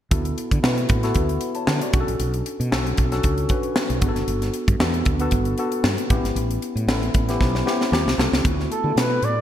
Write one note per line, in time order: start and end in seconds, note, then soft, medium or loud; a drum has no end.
0.11 0.33 D2 medium
0.11 0.47 B3 medium
0.11 0.48 E4 medium
0.11 0.48 F#4 medium
0.11 0.48 A4 medium
0.11 kick loud
0.11 closed hi-hat medium
0.25 closed hi-hat medium
0.38 closed hi-hat medium
0.51 0.61 D3 medium
0.51 kick medium
0.51 closed hi-hat medium
0.63 0.84 B2 medium
0.63 0.90 B3 medium
0.63 0.90 E4 medium
0.63 0.90 F#4 medium
0.63 0.91 B4 medium
0.63 snare loud
0.78 closed hi-hat soft
0.89 1.11 A2 medium
0.89 kick medium
0.89 closed hi-hat medium
1.03 1.30 B3 medium
1.03 1.30 E4 medium
1.03 1.30 F#4 medium
1.03 1.30 A4 medium
1.03 snare soft
1.03 closed hi-hat soft
1.15 1.37 D2 medium
1.15 kick medium
1.15 closed hi-hat medium
1.29 closed hi-hat soft
1.41 closed hi-hat medium
1.55 1.67 C#5 medium
1.55 1.67 A5 medium
1.55 closed hi-hat soft
1.67 1.79 D3 medium
1.67 1.82 A4 soft
1.67 1.81 F#5 medium
1.67 snare loud
1.81 1.92 F#4 medium
1.81 2.06 D5 medium
1.81 closed hi-hat medium
1.93 2.05 B1 medium
1.93 2.57 C#4 medium
1.93 2.57 D4 medium
1.93 2.57 F#4 medium
1.93 2.01 G#4 medium
1.93 kick loud
1.93 closed hi-hat medium
2.00 2.60 A4 medium
2.08 2.18 A#1 medium
2.08 closed hi-hat medium
2.20 2.41 B1 loud
2.20 closed hi-hat medium
2.34 closed hi-hat medium
2.46 closed hi-hat medium
2.60 2.70 B2 medium
2.60 closed hi-hat medium
2.71 2.93 B1 medium
2.71 2.98 C#4 medium
2.71 2.98 D4 medium
2.71 2.98 F#4 medium
2.71 2.99 A4 medium
2.71 snare loud
2.87 closed hi-hat soft
2.97 3.19 B1 medium
2.97 kick medium
2.97 closed hi-hat medium
3.11 3.38 C#4 medium
3.11 3.38 D4 medium
3.11 3.39 F#4 medium
3.11 3.39 A4 medium
3.11 snare soft
3.11 closed hi-hat soft
3.23 3.45 C#2 medium
3.23 kick medium
3.23 closed hi-hat medium
3.38 closed hi-hat soft
3.49 3.86 C#4 medium
3.49 3.86 D4 medium
3.49 3.86 F#4 medium
3.49 3.87 B4 medium
3.49 kick medium
3.49 closed hi-hat medium
3.63 closed hi-hat soft
3.76 snare loud
3.90 4.00 B1 medium
3.90 closed hi-hat medium
4.01 4.13 G1 loud
4.01 4.65 B3 medium
4.01 4.65 D4 medium
4.01 4.65 F#4 medium
4.01 4.09 G#4 medium
4.01 kick loud
4.01 closed hi-hat medium
4.08 4.69 A4 medium
4.16 4.26 F#1 medium
4.16 snare soft
4.16 closed hi-hat medium
4.27 4.49 G1 loud
4.27 closed hi-hat medium
4.42 snare soft
4.42 closed hi-hat medium
4.54 closed hi-hat medium
4.68 4.78 G2 medium
4.68 kick medium
4.68 closed hi-hat medium
4.79 5.01 E2 medium
4.79 5.06 B3 medium
4.79 5.07 D4 medium
4.79 5.07 F#4 medium
4.79 5.07 A4 medium
4.79 snare loud
4.94 closed hi-hat soft
5.05 5.27 D2 medium
5.05 kick medium
5.05 closed hi-hat medium
5.20 5.47 B3 medium
5.20 5.47 D4 medium
5.20 5.47 F#4 medium
5.20 5.47 A4 medium
5.20 closed hi-hat medium
5.31 5.53 G1 loud
5.31 kick medium
5.31 closed hi-hat medium
5.45 closed hi-hat soft
5.58 5.94 B3 medium
5.58 5.95 D4 medium
5.58 5.95 F#4 medium
5.58 5.95 A4 medium
5.58 closed hi-hat medium
5.72 closed hi-hat soft
5.84 5.95 G2 medium
5.84 snare loud
5.98 closed hi-hat medium
6.10 6.22 A1 medium
6.10 6.73 B3 medium
6.10 6.74 C#4 medium
6.10 6.74 E4 medium
6.10 6.74 G4 medium
6.10 kick loud
6.10 closed hi-hat medium
6.23 6.33 G#1 medium
6.23 snare soft
6.23 closed hi-hat medium
6.35 6.57 A1 loud
6.35 closed hi-hat medium
6.51 closed hi-hat medium
6.62 closed hi-hat medium
6.75 6.86 A2 medium
6.75 closed hi-hat medium
6.87 7.09 A1 medium
6.87 7.15 B3 medium
6.87 7.15 C#4 medium
6.87 7.15 E4 medium
6.87 7.15 A4 medium
6.87 snare loud
7.03 closed hi-hat soft
7.14 7.36 A1 medium
7.14 kick medium
7.14 closed hi-hat medium
7.29 7.55 B3 medium
7.29 7.55 C#4 medium
7.29 7.55 E4 medium
7.29 7.56 G4 medium
7.29 snare soft
7.29 closed hi-hat medium
7.41 7.62 B1 medium
7.41 kick medium
7.41 snare medium
7.55 snare soft
7.66 7.92 B3 medium
7.66 7.92 C#4 medium
7.66 7.92 E4 medium
7.66 7.91 G4 medium
7.66 snare medium
7.81 snare medium
7.91 8.04 D#2 loud
7.91 8.13 A#3 medium
7.91 8.13 C4 medium
7.91 8.14 F4 medium
7.91 8.14 G4 medium
7.91 snare medium
8.06 8.16 C2 medium
8.06 snare medium
8.18 8.30 C2 medium
8.18 8.37 A#3 medium
8.18 8.37 C4 medium
8.18 8.37 F4 medium
8.18 8.37 A4 medium
8.18 snare loud
8.32 8.42 C#2 medium
8.32 snare medium
8.44 8.66 D2 medium
8.44 8.71 A3 medium
8.44 8.71 B3 medium
8.44 8.71 E4 medium
8.44 8.71 F#4 medium
8.44 kick loud
8.44 closed hi-hat medium
8.60 snare soft
8.71 9.00 A4 medium
8.71 closed hi-hat medium
8.83 8.94 D3 medium
8.83 9.41 A3 medium
8.83 9.41 B3 medium
8.83 9.41 E4 medium
8.83 8.90 G4 medium
8.91 9.41 A4 medium
8.96 9.18 B2 medium
8.96 9.26 B4 medium
8.96 snare loud
8.96 closed hi-hat medium
9.22 9.41 A2 medium
9.22 9.41 D5 medium
9.22 closed hi-hat medium